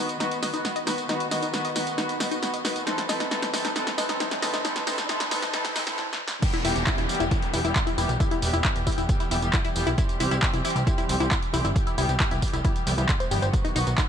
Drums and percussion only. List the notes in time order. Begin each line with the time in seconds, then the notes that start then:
0.09 closed hi-hat, tambourine
0.20 snare, closed hi-hat, tambourine
0.31 closed hi-hat, tambourine
0.43 snare, open hi-hat, tambourine
0.54 closed hi-hat, tambourine
0.65 snare, closed hi-hat, tambourine
0.76 closed hi-hat, tambourine
0.87 snare, open hi-hat, tambourine
0.98 closed hi-hat, tambourine
1.09 snare, closed hi-hat, tambourine
1.20 closed hi-hat, tambourine
1.31 snare, open hi-hat, tambourine
1.42 closed hi-hat, tambourine
1.54 snare, closed hi-hat, tambourine
1.65 closed hi-hat, tambourine
1.76 snare, open hi-hat, tambourine
1.87 closed hi-hat, tambourine
1.98 snare, closed hi-hat, tambourine
2.09 closed hi-hat, tambourine
2.20 snare, open hi-hat, tambourine
2.31 closed hi-hat, tambourine
2.43 snare, closed hi-hat, tambourine
2.54 closed hi-hat, tambourine
2.65 snare, open hi-hat, tambourine
2.76 closed hi-hat, tambourine
2.87 snare, closed hi-hat, tambourine
2.98 snare, closed hi-hat, tambourine
3.09 snare, open hi-hat, tambourine
3.20 snare, closed hi-hat, tambourine
3.31 snare, closed hi-hat, tambourine
3.42 snare, closed hi-hat, tambourine
3.54 snare, open hi-hat, tambourine
3.65 snare, closed hi-hat, tambourine
3.76 snare, closed hi-hat, tambourine
3.87 snare, closed hi-hat, tambourine
3.98 snare, open hi-hat, tambourine
4.09 snare, closed hi-hat, tambourine
4.20 snare, closed hi-hat, tambourine
4.31 snare, closed hi-hat, tambourine
4.42 snare, open hi-hat, tambourine
4.54 snare, closed hi-hat, tambourine
4.65 snare, closed hi-hat, tambourine
4.76 snare, closed hi-hat, tambourine
4.87 snare, open hi-hat, tambourine
4.98 snare, closed hi-hat, tambourine
5.09 snare, closed hi-hat, tambourine
5.20 snare, closed hi-hat, tambourine
5.31 snare, open hi-hat, tambourine
5.42 snare, closed hi-hat, tambourine
5.54 snare, closed hi-hat, tambourine
5.65 snare, closed hi-hat, tambourine
5.76 snare, open hi-hat, tambourine
5.87 snare, closed hi-hat, tambourine
5.98 snare
6.13 snare
6.28 snare
6.42 kick, closed hi-hat, crash, tambourine
6.54 closed hi-hat, tambourine
6.65 open hi-hat, tambourine
6.76 closed hi-hat, tambourine
6.87 kick, clap, closed hi-hat, tambourine
6.98 closed hi-hat, tambourine
7.09 open hi-hat, tambourine
7.15 closed hi-hat
7.20 closed hi-hat, tambourine
7.31 kick, closed hi-hat, tambourine
7.42 closed hi-hat, tambourine
7.54 open hi-hat, tambourine
7.65 closed hi-hat, tambourine
7.76 kick, clap, closed hi-hat, tambourine
7.87 closed hi-hat, tambourine
7.98 open hi-hat, tambourine
8.09 closed hi-hat, tambourine
8.20 kick, closed hi-hat, tambourine
8.31 closed hi-hat, tambourine
8.42 open hi-hat, tambourine
8.54 closed hi-hat, tambourine
8.65 kick, clap, closed hi-hat, tambourine
8.76 closed hi-hat, tambourine
8.87 kick, open hi-hat, tambourine
8.92 closed hi-hat
8.98 closed hi-hat, tambourine
9.09 kick, closed hi-hat, tambourine
9.20 closed hi-hat, tambourine
9.31 open hi-hat, tambourine
9.42 closed hi-hat, tambourine
9.53 kick, clap, closed hi-hat, tambourine
9.65 closed hi-hat, tambourine
9.76 open hi-hat, tambourine
9.87 closed hi-hat, tambourine
9.98 kick, closed hi-hat, tambourine
10.09 closed hi-hat, tambourine
10.20 open hi-hat, tambourine
10.31 closed hi-hat, tambourine
10.42 kick, clap, closed hi-hat, tambourine
10.54 closed hi-hat, tambourine
10.65 open hi-hat, tambourine
10.70 closed hi-hat
10.76 closed hi-hat, tambourine
10.87 kick, closed hi-hat, tambourine
10.98 closed hi-hat, tambourine
11.09 open hi-hat, tambourine
11.20 closed hi-hat, tambourine
11.31 kick, clap, closed hi-hat, tambourine
11.43 closed hi-hat, tambourine
11.54 open hi-hat, tambourine
11.65 closed hi-hat, tambourine
11.76 kick, closed hi-hat, tambourine
11.87 closed hi-hat, tambourine
11.98 open hi-hat, tambourine
12.09 closed hi-hat, tambourine
12.20 kick, clap, closed hi-hat, tambourine
12.31 closed hi-hat, tambourine
12.42 kick, open hi-hat, tambourine
12.48 closed hi-hat
12.53 closed hi-hat, tambourine
12.65 kick, closed hi-hat, tambourine
12.76 closed hi-hat, tambourine
12.87 open hi-hat, tambourine
12.98 closed hi-hat, tambourine
13.09 kick, clap, closed hi-hat, tambourine
13.20 closed hi-hat, tambourine
13.31 open hi-hat, tambourine
13.42 closed hi-hat, tambourine
13.53 kick, closed hi-hat, tambourine
13.65 closed hi-hat, tambourine
13.76 open hi-hat, tambourine
13.87 closed hi-hat, tambourine
13.98 kick, clap, closed hi-hat, tambourine